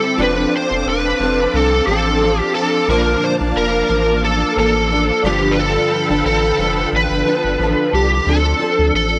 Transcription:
0.00 0.17 D3 medium
0.00 0.18 G3 medium
0.00 0.18 C4 medium
0.00 2.85 C4 medium
0.00 0.20 E4 medium
0.00 0.22 A4 medium
0.00 0.17 G5 medium
0.00 0.17 B5 medium
0.00 5.21 D6 medium
0.17 0.46 F1 loud
0.17 0.70 F3 medium
0.17 0.71 C4 medium
0.17 0.71 D4 medium
0.17 0.68 A4 medium
0.17 5.21 F5 medium
0.17 5.20 A5 medium
0.23 0.52 B4 medium
0.56 0.89 C5 medium
0.69 0.83 F1 loud
0.69 1.20 D4 soft
0.69 1.19 A4 soft
0.74 1.19 C4 soft
0.86 1.13 E1 medium
0.86 1.57 B4 medium
1.19 1.47 F1 medium
1.19 1.86 F3 medium
1.19 1.87 C4 medium
1.19 1.89 D4 medium
1.23 1.90 A4 medium
1.54 1.81 C2 medium
1.54 1.86 A4 medium
1.86 2.41 A1 medium
1.86 2.19 F3 medium
1.86 2.20 C4 medium
1.86 2.22 D4 medium
1.86 2.39 A4 medium
1.90 2.23 A4 medium
2.20 2.89 F3 medium
2.20 2.89 C4 medium
2.20 2.90 D4 medium
2.24 2.91 A4 medium
2.39 2.54 G4 medium
2.55 2.90 A4 medium
2.88 3.15 A#1 loud
2.88 3.41 A#2 medium
2.88 3.41 D3 medium
2.88 3.42 F3 medium
2.88 5.22 A#3 medium
2.88 3.41 A#3 medium
2.88 3.39 D4 medium
2.88 3.24 A#4 medium
3.24 3.33 C5 medium
3.41 3.53 A#1 loud
3.41 3.87 F3 soft
3.41 3.89 A#3 soft
3.41 3.90 D4 soft
3.56 3.83 F1 loud
3.56 4.24 A#4 medium
3.88 4.44 A1 medium
3.88 4.55 F3 medium
3.88 4.56 A#3 medium
3.88 4.58 D4 medium
4.24 4.58 A4 medium
4.55 5.11 A1 medium
4.55 4.88 F3 medium
4.55 4.90 A#3 medium
4.55 4.91 D4 medium
4.55 5.25 A4 medium
4.55 4.92 A4 medium
4.90 5.24 F3 medium
4.90 5.25 A#3 medium
4.90 5.24 D4 medium
4.94 5.25 A4 medium
5.23 5.78 G1 loud
5.23 6.10 G2 medium
5.23 8.30 D3 medium
5.23 6.13 F3 medium
5.23 6.11 B3 medium
5.23 6.10 D4 medium
5.23 5.53 G4 medium
5.23 8.24 A4 medium
5.23 6.09 A4 medium
5.23 8.24 F5 medium
5.23 8.24 G5 medium
5.23 8.25 B5 medium
5.51 5.58 B4 medium
5.59 6.25 A4 medium
6.09 6.22 G1 loud
6.09 6.58 B3 soft
6.09 6.59 D4 soft
6.09 6.58 A4 soft
6.13 6.57 F3 soft
6.25 6.52 A1 loud
6.25 6.89 A4 medium
6.58 6.86 F1 medium
6.58 7.24 F3 medium
6.58 7.25 B3 medium
6.58 7.27 D4 medium
6.62 7.28 A4 medium
6.93 7.08 A1 medium
6.93 7.91 B4 medium
7.11 7.23 G1 medium
7.25 7.57 F3 medium
7.25 7.59 B3 medium
7.25 7.60 D4 medium
7.29 7.61 A4 medium
7.44 7.57 G1 medium
7.59 7.75 A1 loud
7.59 8.25 F3 medium
7.59 8.27 B3 medium
7.59 8.28 D4 medium
7.59 8.29 A4 medium
7.93 8.20 C2 loud
7.93 8.29 G4 medium
8.26 8.54 D2 loud
8.26 8.57 F3 medium
8.26 8.59 C4 medium
8.26 8.60 D4 medium
8.26 8.91 A4 medium
8.26 8.62 A4 medium
8.59 9.19 F3 medium
8.59 9.19 C4 medium
8.59 9.19 D4 medium
8.63 9.19 A4 medium
8.79 8.91 D2 loud
8.94 9.19 A1 medium
8.94 9.19 A4 medium

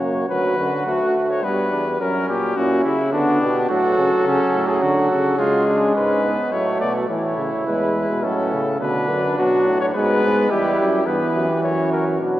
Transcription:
0.00 0.28 F#2 medium
0.00 0.28 A#3 medium
0.00 0.27 F#4 medium
0.00 0.28 C#5 medium
0.28 0.56 D2 medium
0.28 0.59 F#3 medium
0.28 1.39 F#4 medium
0.28 0.83 B4 medium
0.57 0.71 F#2 medium
0.57 0.86 D3 medium
0.86 0.99 D2 medium
0.86 1.44 A3 medium
0.86 1.17 F#4 medium
1.15 1.45 D2 medium
1.29 1.45 C#5 medium
1.43 1.71 G2 medium
1.43 2.00 G3 medium
1.43 1.71 B3 medium
1.43 2.00 B4 medium
1.72 2.00 E2 medium
1.72 1.84 D4 medium
2.00 2.28 F#2 medium
2.00 2.56 F#3 medium
2.00 2.55 C#4 medium
2.00 2.28 A#4 medium
2.28 2.56 A#2 medium
2.28 2.58 G4 medium
2.56 2.84 A#2 medium
2.56 3.12 C#4 medium
2.56 3.14 E4 medium
2.56 2.84 F#4 medium
2.84 3.15 C#3 medium
2.84 3.12 E4 medium
3.12 3.41 D3 medium
3.12 3.68 B3 medium
3.12 3.68 D4 medium
3.12 3.40 F#4 medium
3.41 3.69 B2 medium
3.41 3.69 G4 medium
3.69 3.97 A2 medium
3.69 5.35 F#3 medium
3.69 4.24 F#4 loud
3.69 4.80 A4 medium
3.98 4.10 C#3 medium
4.26 4.38 C#3 medium
4.26 4.69 C#4 medium
4.54 4.81 A2 medium
4.68 4.84 G#4 medium
4.82 5.09 D3 medium
4.82 5.09 F#4 medium
4.82 5.38 F#4 medium
5.10 5.37 C#3 medium
5.10 5.40 A4 medium
5.38 5.94 C#3 medium
5.38 6.35 G#3 medium
5.38 5.66 F4 loud
5.38 5.95 G#4 medium
5.67 5.97 D4 medium
5.95 6.23 G#2 medium
5.95 6.23 C#4 medium
5.95 6.54 B4 medium
6.23 6.37 G#2 medium
6.23 6.52 B3 medium
6.52 6.80 A2 medium
6.52 7.08 F#3 medium
6.52 7.08 A3 medium
6.52 6.80 C#5 medium
6.80 7.09 B2 medium
6.80 6.93 D5 medium
7.09 7.62 A2 medium
7.09 7.36 E3 medium
7.09 8.20 E4 medium
7.09 7.62 C#5 medium
7.38 7.51 C#3 medium
7.66 8.08 E2 medium
7.66 8.25 G#3 medium
7.66 8.25 B4 medium
8.09 8.24 B2 medium
8.23 8.80 A2 medium
8.23 8.54 F#3 medium
8.23 8.64 C#4 medium
8.23 8.80 A4 medium
8.53 8.80 C#3 medium
8.80 9.11 B2 medium
8.80 9.37 D3 medium
8.80 9.92 D4 medium
8.80 9.37 B4 medium
9.09 9.37 F#2 medium
9.37 9.67 B2 medium
9.37 9.93 F#3 medium
9.37 9.79 F#4 medium
9.66 9.94 A2 medium
9.80 9.86 C#5 medium
9.94 10.22 G#2 medium
9.94 10.50 G#3 medium
9.94 10.51 B3 medium
9.94 10.52 B4 medium
10.23 10.50 G#2 medium
10.50 10.78 E2 medium
10.50 11.05 G3 medium
10.50 11.06 E4 medium
10.50 11.08 G4 medium
10.79 11.06 F#2 medium
11.06 11.19 G2 medium
11.06 12.18 E3 medium
11.06 11.48 B3 medium
11.06 11.62 B4 medium
11.35 11.48 F#2 medium
11.48 11.64 G4 medium
11.63 12.23 F#2 medium
11.63 12.20 F#4 medium
11.63 11.91 C#5 medium
11.92 12.05 A#4 medium
12.20 12.40 B2 medium
12.20 12.40 F#3 medium
12.20 12.40 D4 medium
12.20 12.40 B4 medium

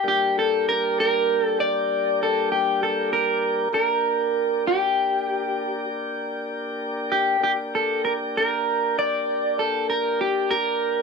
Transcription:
0.04 3.69 G3 medium
0.04 3.69 A#3 medium
0.04 3.69 D4 medium
0.04 3.69 G4 medium
0.08 0.38 G4 medium
0.39 0.68 A4 medium
0.69 0.99 A#4 medium
1.00 1.44 A#4 medium
1.44 1.60 A4 medium
1.60 2.22 D5 medium
2.23 2.51 A4 medium
2.52 2.82 G4 medium
2.83 3.12 A4 medium
3.13 3.73 A#4 medium
3.73 7.37 A#3 medium
3.73 7.37 D4 medium
3.73 7.37 G4 medium
3.73 4.67 A#4 medium
4.67 5.85 G4 medium
7.12 7.42 G4 medium
7.40 11.02 A#3 medium
7.40 11.02 D4 medium
7.40 11.02 G4 medium
7.40 7.51 G4 medium
7.75 8.04 A4 medium
8.05 8.13 A#4 medium
8.37 8.98 A#4 medium
8.99 9.59 D5 medium
9.59 9.89 A4 medium
9.90 10.19 A#4 medium
10.21 10.50 G4 medium
10.51 11.02 A#4 medium

